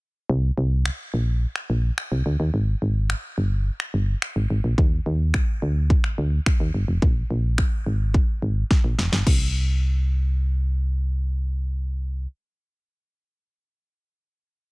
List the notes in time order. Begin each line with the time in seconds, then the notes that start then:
0.29 C2
0.58 C2
0.86 finger snap
1.14 A#1
1.56 finger snap
1.70 A#1
1.98 finger snap
2.12 C2
2.26 D2
2.40 D#2
2.54 G#1
2.82 G#1
3.10 finger snap
3.38 G1
3.80 finger snap
3.94 G1
4.22 finger snap
4.36 G#1
4.50 G#1
4.64 A#1
4.78 D#2, kick
5.06 D#2
5.34 finger snap, kick
5.62 D2
5.90 kick
6.04 finger snap
6.18 D2
6.46 finger snap, kick
6.60 D#2
6.74 G1
6.88 F1
7.02 A#1, kick
7.30 A#1
7.58 finger snap, kick
7.86 G#1
8.14 kick
8.42 G#1
8.71 kick, snare
8.84 A#1
8.98 F1, snare
9.12 G1, snare
9.27 C2, kick, crash